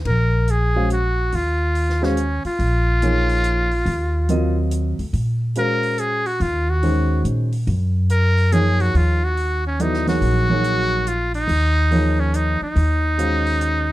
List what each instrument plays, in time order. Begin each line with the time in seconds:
0.05 upright bass A#1, muted trumpet A#4, kick, ride
0.48 muted trumpet G#4, closed hi-hat
0.75 grand piano G#3 C#4 F#4 C5 F5
0.90 muted trumpet F#4, closed hi-hat
1.32 upright bass D#2, muted trumpet F4, open hi-hat
1.75 open hi-hat
1.90 snare
2.02 grand piano G#3 C#4 F#4 C5 F5, muted trumpet C#4, snare
2.17 closed hi-hat
2.44 muted trumpet F4, muted upright bass stroke, open hi-hat
2.59 upright bass A#1, open hi-hat
3.02 grand piano F3 A#3 D#4 G#4 C#5, closed hi-hat
3.29 open hi-hat
3.44 closed hi-hat
3.71 open hi-hat
3.86 upright bass D#2, open hi-hat
4.29 grand piano F#3 C4 F4 A#4 D#5, closed hi-hat
4.71 closed hi-hat
4.99 upright bass D2, open hi-hat
5.13 upright bass A#2, open hi-hat
5.55 grand piano G#3 C#4 F#4 C5 F5, muted trumpet A#4, closed hi-hat
5.83 open hi-hat
5.98 muted trumpet G#4, closed hi-hat
6.26 muted trumpet F#4, open hi-hat
6.40 upright bass D#2, muted trumpet F4, open hi-hat
6.70 muted trumpet F#4
6.83 grand piano D#3 G#3 C#4 F#4 C5, open hi-hat
7.24 upright bass A#2, closed hi-hat
7.52 open hi-hat
7.67 upright bass F#2, open hi-hat
8.10 muted trumpet A#4, closed hi-hat
8.37 open hi-hat
8.52 grand piano F3 A#3 D#4 G#4 C#5, muted trumpet G#4, closed hi-hat
8.80 muted trumpet F#4, open hi-hat
8.94 upright bass D#2, muted trumpet F4, open hi-hat
9.24 muted trumpet F#4
9.37 open hi-hat
9.67 muted trumpet C#4
9.80 grand piano F#3 B3 E4 A4 D5, muted trumpet D#4, closed hi-hat
9.94 snare
10.07 grand piano F#3 A#3 D#4 G#4 C#5, muted trumpet F#4, snare, open hi-hat
10.21 upright bass A#1, open hi-hat
10.49 grand piano F#3 A#3 D#4 G#4 C#5
10.64 closed hi-hat
11.07 muted trumpet F4, closed hi-hat
11.34 muted trumpet D#4, open hi-hat
11.48 upright bass D#2, open hi-hat
11.91 grand piano F3 A#3 D#4 G#4 C#5, open hi-hat
12.20 muted trumpet C#4
12.34 muted trumpet D#4, closed hi-hat
12.61 muted trumpet D#4, muted upright bass stroke
12.76 upright bass D#2, open hi-hat
13.18 grand piano G#3 C#4 F#4 C5 F5, closed hi-hat
13.46 open hi-hat
13.61 closed hi-hat